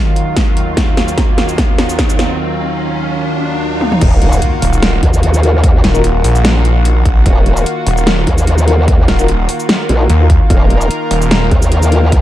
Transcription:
Already playing: D#2 D#3 F#3 F4, riser
0.16 closed hi-hat
0.37 kick, snare, closed hi-hat
0.57 closed hi-hat
0.77 kick, snare, closed hi-hat
0.97 snare, closed hi-hat
1.08 shaker
1.18 kick, snare, closed hi-hat
1.38 snare, closed hi-hat
1.49 shaker
1.58 kick, snare, closed hi-hat
1.78 snare, closed hi-hat
1.89 shaker
1.99 kick, snare, closed hi-hat
2.10 shaker
2.19 snare, closed hi-hat
3.81 high tom
3.92 mid tom
4.01 D#1 D#3 A#3 F4 F#4, kick, closed hi-hat, crash, impact
4.22 closed hi-hat
4.33 shaker
4.42 closed hi-hat
4.62 D#1, open hi-hat
4.73 shaker
4.83 snare, closed hi-hat
5.03 D#2, kick, closed hi-hat
5.14 shaker
5.23 closed hi-hat
5.34 shaker
5.43 D#4 F4 F#4 A#4, closed hi-hat
5.64 kick, closed hi-hat
5.84 D#1, kick, snare, closed hi-hat
5.95 D#4 F4 F#4 A#4, shaker
6.04 closed hi-hat
6.24 A#1, open hi-hat
6.35 shaker
6.45 snare, closed hi-hat
6.65 closed hi-hat
6.85 closed hi-hat
7.05 A#1, kick, closed hi-hat
7.26 D#1, kick, closed hi-hat
7.46 closed hi-hat
7.57 shaker
7.66 closed hi-hat
7.87 D#1, open hi-hat
7.97 shaker
8.07 snare, closed hi-hat
8.27 D#2, kick, closed hi-hat
8.38 shaker
8.47 closed hi-hat
8.58 shaker
8.68 D#4 F4 F#4 A#4, closed hi-hat
8.88 kick, closed hi-hat
9.08 D#1, kick, snare, closed hi-hat
9.19 D#4 F4 F#4 A#4, shaker
9.28 closed hi-hat
9.49 open hi-hat
9.60 shaker
9.69 snare, closed hi-hat
9.89 A#1, closed hi-hat
10.00 D#4 F4 F#4 A#4
10.10 D#2, closed hi-hat
10.20 D#4 F4 F#4 A#4
10.30 kick, closed hi-hat
10.50 D#1 A#4, kick, closed hi-hat
10.70 closed hi-hat
10.81 shaker
10.91 closed hi-hat
11.11 D#1, open hi-hat
11.22 shaker
11.31 snare, closed hi-hat
11.51 D#2, kick, closed hi-hat
11.62 shaker
11.72 closed hi-hat
11.82 shaker
11.92 D#4 F4 F#4 A#4, closed hi-hat
12.12 kick, closed hi-hat

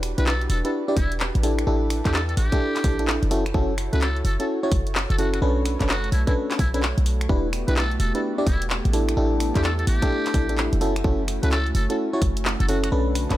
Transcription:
Already playing: E1 D4 F#4 G4 B4
0.03 finger snap, open hi-hat
0.18 B1 D4 E4 G4 B4, closed hi-hat
0.26 A4, clap, closed hi-hat
0.41 closed hi-hat
0.50 E1 A4, open hi-hat
0.65 D4 E4 G4 A4 B4, closed hi-hat
0.88 D4 E4 G4 D5
0.96 E1 E4, kick, open hi-hat
1.12 closed hi-hat
1.20 clap
1.35 A1, closed hi-hat
1.43 D4 E4 G4 A4, open hi-hat
1.59 finger snap, closed hi-hat
1.67 A1 D4 E4 G4 A4
1.90 finger snap, open hi-hat
2.05 E2 D4 E4 G4 A4, kick, clap, closed hi-hat
2.14 A4, clap, closed hi-hat
2.29 A4, closed hi-hat
2.37 A1 G4, open hi-hat
2.52 D4 E4 G4 A4, kick, closed hi-hat
2.76 clap, open hi-hat
2.84 A1 D4 E4 G4 A4, kick, open hi-hat
2.99 D4 E4 G4 A4, closed hi-hat
3.07 clap
3.23 F#1, closed hi-hat
3.31 C#4 E4 F#4 A4 C#5, open hi-hat
3.46 finger snap, closed hi-hat
3.54 F#1 C#4 E4 F#4 A4, kick
3.78 finger snap, open hi-hat
3.93 C#2 C#4 E4 F#4 A4 B4, closed hi-hat
4.01 A4, clap, closed hi-hat
4.16 closed hi-hat
4.25 F#1 A4, open hi-hat
4.40 C#4 E4 F#4 A4, closed hi-hat
4.63 C#4 E4 F#4 C#5
4.72 F#1, kick, open hi-hat
4.87 closed hi-hat
4.95 clap
5.10 F#1 A4, closed hi-hat
5.18 C#4 E4 F#4 A4, open hi-hat
5.34 F#4, finger snap, closed hi-hat
5.42 B1 A3 C#4 D4 A4 B4
5.65 finger snap, open hi-hat
5.80 F#1 C#4 D4 A4 B4, kick, clap, closed hi-hat
5.89 F#4, clap, closed hi-hat
6.04 closed hi-hat
6.12 B1 E4, open hi-hat
6.27 C#4 D4 E4 A4 B4, kick, closed hi-hat
6.51 clap, open hi-hat
6.59 B1 E4, kick, open hi-hat
6.74 C#4 D4 E4 A4 B4, closed hi-hat
6.83 clap
6.98 B1, closed hi-hat
7.06 open hi-hat
7.21 finger snap, closed hi-hat
7.29 E1 B3 D4 E4 F#4 G4 B4, kick
7.53 finger snap, open hi-hat
7.68 B1 D4 E4 G4 B4, closed hi-hat
7.76 A4, clap, closed hi-hat
7.91 closed hi-hat
8.00 E1 A4, open hi-hat
8.15 D4 E4 G4 A4 B4, closed hi-hat
8.38 D4 E4 G4 D5
8.47 E1 E4, kick, open hi-hat
8.62 closed hi-hat
8.70 clap
8.85 A1, closed hi-hat
8.93 D4 E4 G4 A4, open hi-hat
9.09 finger snap, closed hi-hat
9.17 A1 D4 E4 G4 A4
9.40 finger snap, open hi-hat
9.55 E2 D4 E4 G4 A4, kick, clap, closed hi-hat
9.64 A4, clap, closed hi-hat
9.79 A4, closed hi-hat
9.87 A1 G4, open hi-hat
10.02 D4 E4 G4 A4, kick, closed hi-hat
10.26 clap, open hi-hat
10.34 A1 D4 E4 G4 A4, kick, open hi-hat
10.49 D4 E4 G4 A4, closed hi-hat
10.58 clap
10.73 F#1, closed hi-hat
10.81 A3 C#4 E4 F#4 A4, open hi-hat
10.96 finger snap, closed hi-hat
11.04 F#1 C#4 E4 F#4 A4, kick
11.28 finger snap, open hi-hat
11.43 C#2 C#4 E4 F#4 A4 B4, closed hi-hat
11.51 A4, clap, closed hi-hat
11.66 closed hi-hat
11.75 F#1 A4, open hi-hat
11.90 C#4 E4 F#4 A4, closed hi-hat
12.13 C#4 E4 F#4 C#5
12.22 F#1, kick, open hi-hat
12.37 closed hi-hat
12.45 clap
12.60 F#1 A4, closed hi-hat
12.68 C#4 E4 F#4 A4, open hi-hat
12.84 F#4, finger snap, closed hi-hat
12.92 B1 D3 C#4 D4 A4 B4 C#5
13.15 finger snap, open hi-hat
13.30 F#1 C#4 D4 A4 B4, kick, clap, closed hi-hat

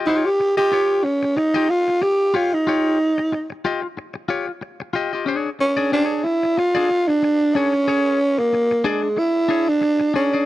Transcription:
0.06 D#4 F4 G4 C#5
0.25 G4
0.40 muted clean electric guitar stroke
0.57 F4 G4 D#5
0.72 F4 G4 C#5
1.04 C#4, muted clean electric guitar stroke
1.23 muted clean electric guitar stroke
1.36 D#4, muted clean electric guitar stroke
1.54 F4 G4 D#5
1.69 F4, muted clean electric guitar stroke
1.88 muted clean electric guitar stroke
2.01 G4, muted clean electric guitar stroke
2.34 F4 G4 C#5
2.52 D#4, muted clean electric guitar stroke
2.67 F4 G4 C#5
3.18 muted clean electric guitar stroke
3.32 muted clean electric guitar stroke
3.50 muted clean electric guitar stroke
3.65 F4 G4 D#5
3.82 muted clean electric guitar stroke
3.97 muted clean electric guitar stroke
4.14 muted clean electric guitar stroke
4.29 F4 G4 C#5
4.47 muted clean electric guitar stroke
4.61 muted clean electric guitar stroke
4.80 muted clean electric guitar stroke
4.93 F4 G4 D#5
5.13 F4 G4 D#5
5.26 D4 G#4 C#5
5.59 C#4, muted clean electric guitar stroke
5.77 D4 G#4 D5
5.92 C#4 D4 G4 C5
6.05 D4 G#4 C#5
6.24 E4, muted clean electric guitar stroke
6.43 muted clean electric guitar stroke
6.58 F4, muted clean electric guitar stroke
6.75 D4 G#4 D5
6.91 muted clean electric guitar stroke
7.08 D4, muted clean electric guitar stroke
7.23 muted clean electric guitar stroke
7.55 C#4 D4 G#4 C#5
7.73 muted clean electric guitar stroke
7.88 G#4 C#5
8.38 A#3, muted clean electric guitar stroke
8.53 muted clean electric guitar stroke
8.71 muted clean electric guitar stroke
8.84 G#3 D4 G#4 D5
9.02 muted clean electric guitar stroke
9.17 E4, muted clean electric guitar stroke
9.49 D4 G#4 C#5
9.68 D4, muted clean electric guitar stroke
9.81 muted clean electric guitar stroke
10.00 muted clean electric guitar stroke
10.14 C#4 D4 G#4 D5
10.33 D4 G#4 D5

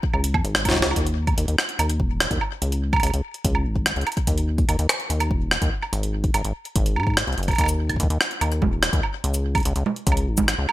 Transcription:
0.03 kick
0.14 C#2, high woodblock
0.24 closed hi-hat
0.34 F2, kick, high woodblock
0.44 G#1, closed hi-hat
0.55 cross-stick
0.65 kick, snare, closed hi-hat, high woodblock
0.70 kick, snare
0.74 kick, snare
0.76 snare
0.81 kick, snare
0.86 C#2
0.91 high woodblock
0.96 D#2, kick, closed hi-hat
1.07 closed hi-hat
1.27 kick, closed hi-hat, high woodblock
1.38 D#2, closed hi-hat
1.48 D#2, closed hi-hat
1.58 cross-stick
1.69 closed hi-hat
1.79 D#2, closed hi-hat, high woodblock
1.90 closed hi-hat
2.00 D#1, kick
2.20 cross-stick, closed hi-hat
2.31 D#2, kick, closed hi-hat
2.41 high woodblock
2.62 C#2, closed hi-hat
2.72 closed hi-hat
2.93 kick, closed hi-hat, high woodblock
2.96 closed hi-hat, high woodblock
3.00 C#2, closed hi-hat, high woodblock
3.03 closed hi-hat, high woodblock
3.07 high woodblock
3.10 C#2, closed hi-hat, high woodblock
3.34 closed hi-hat
3.45 C#2, kick, closed hi-hat
3.55 high woodblock
3.65 G#1
3.76 kick
3.86 cross-stick, closed hi-hat
3.96 C#2, closed hi-hat
4.01 closed hi-hat
4.07 closed hi-hat, high woodblock
4.12 closed hi-hat
4.17 kick, closed hi-hat
4.27 D#2, kick, closed hi-hat
4.38 closed hi-hat
4.58 kick, closed hi-hat
4.69 D#2, closed hi-hat, high woodblock
4.79 D#2, closed hi-hat
4.89 cross-stick
5.00 closed hi-hat
5.10 D#2, closed hi-hat
5.20 closed hi-hat, high woodblock
5.31 D#1, kick
5.51 cross-stick
5.62 D#2, kick, closed hi-hat
5.82 high woodblock
5.93 G#1, closed hi-hat
6.03 closed hi-hat
6.24 kick, closed hi-hat
6.34 G#1, closed hi-hat, high woodblock
6.45 G#1, closed hi-hat
6.65 closed hi-hat
6.76 G#1, kick, closed hi-hat
6.86 closed hi-hat
6.96 G#2, high woodblock
7.00 high woodblock
7.03 kick, high woodblock
7.07 high woodblock
7.10 high woodblock
7.14 cross-stick, closed hi-hat, high woodblock
7.27 C2, closed hi-hat
7.33 closed hi-hat
7.38 F#1, closed hi-hat
7.43 closed hi-hat
7.48 kick, closed hi-hat, high woodblock
7.51 closed hi-hat, high woodblock
7.53 closed hi-hat, high woodblock
7.56 D#2, kick, closed hi-hat, high woodblock
7.58 high woodblock
7.61 closed hi-hat, high woodblock
7.64 closed hi-hat, high woodblock
7.66 closed hi-hat, cabasa, high woodblock
7.89 kick, closed hi-hat, high woodblock
7.96 D#2, kick, closed hi-hat
8.03 kick
8.10 D#2, closed hi-hat
8.21 cross-stick
8.31 closed hi-hat
8.41 D#2, closed hi-hat, high woodblock
8.52 closed hi-hat
8.62 D#1, kick, low conga
8.83 cross-stick, closed hi-hat
8.93 D#2, kick, closed hi-hat
9.03 high woodblock
9.24 C#2, closed hi-hat
9.34 closed hi-hat, cabasa
9.55 kick, closed hi-hat, high woodblock
9.58 closed hi-hat
9.60 closed hi-hat
9.63 C#2, closed hi-hat
9.65 closed hi-hat
9.76 C#2, closed hi-hat
9.86 low conga
9.96 closed hi-hat
10.07 C#2, kick, closed hi-hat
10.12 high woodblock
10.17 closed hi-hat
10.27 G#1
10.38 kick, low conga, cabasa
10.48 cross-stick, closed hi-hat
10.58 C#2
10.69 high woodblock

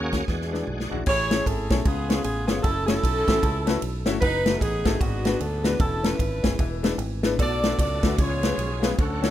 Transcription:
Already playing: D#2 F#3 A#3 C#4 F#4 G#4 A#4 C#5
0.12 A#3 C#4 F#4 C#5, kick, snare, closed hi-hat
0.28 E2 E3 G#3 D4 E4 F#4 G#4 B4 D5, kick, snare
0.41 snare
0.51 G#3 D4 E4 B4, snare
0.67 B1, mid tom
0.80 snare
0.90 A#1 G#3 D4 E4 F#4, floor tom
1.06 A1 A2 E4 G#4 C#5, kick, crash
1.31 A3 C#4 E4 G#4 C#5, snare, ride
1.45 G#1 C#4 E4 A4, kick, ride
1.69 B1 A3 C#4 E4 G#4 C#5, kick, snare, ride
1.85 C#2 C#3 B3 F4 G#4, kick, ride
2.09 B3 C#4 F4 G#4 C#5, snare, ride
2.23 A1 G#4, ride
2.46 G1 B3 C#4 F4 G#4 C#5, snare, ride
2.61 F#1 C#4 E4 A4, kick, ride
2.86 A3 C#4 E4 F#4 A4 C#5, snare, ride
3.03 B1, kick, ride
3.27 A1 A3 C#4 E4 F#4 E5, kick, snare, ride
3.43 C#2, kick, ride
3.66 A3 C#4 E4 F#4 B4, snare, ride
3.82 B1, ride
4.06 G1 A3 C#4 E4 F#4 E5, snare, ride
4.20 F#1 D#4 B4, kick, ride
4.46 A3 B3 D#4 F#4 B4, snare, ride
4.59 A1 B3 D#4 G#4, kick, ride
4.85 G#1 A3 B3 D#4 F#4 A4, kick, snare, ride
4.99 G#1 G#2 B3 D4 F#4, kick, ride
5.25 G#3 B3 D4 F#4 B4, snare, ride
5.39 D2 A4, ride
5.63 G#3 B3 D4 F#4 B4, snare, ride
5.79 E1 E3 C#4 E4 A4, kick, ride
6.03 C#4 E4 A4 B4, snare, ride
6.19 G#1, kick, ride
6.43 F#1 C#4 E4 G#4, kick, snare, ride
6.59 E1 E3, kick, ride
6.83 G#3 B3 D4 E4 B4, snare, ride
6.98 G#1, ride
7.23 G#3 B3 D4 E4 B4, snare, ride
7.39 B1 B2 F#3 A3 B3 C#4 F#4 A4 D5, kick, ride
7.45 D4
7.64 A3 B3 D4 F#4 B4, snare, ride
7.79 C#2 F#4 A4 D5, kick, ride
8.03 D2 A3 B3 D4 F#4 B4, kick, snare, ride
8.18 C#2 C#3 E3 G#3 B3 C#4 F4 G#4 C#5, kick, ride
8.25 F3
8.43 G#3 B3 C#4 F4 B4, snare, ride
8.58 B1, ride
8.82 G#3 B3 C#4 F4 B4, snare, ride
8.98 D2 D3 F#3 A3 C#4 F#4 A4, kick, ride
9.22 A3 C#4 D4 F#4 C#5, snare, ride

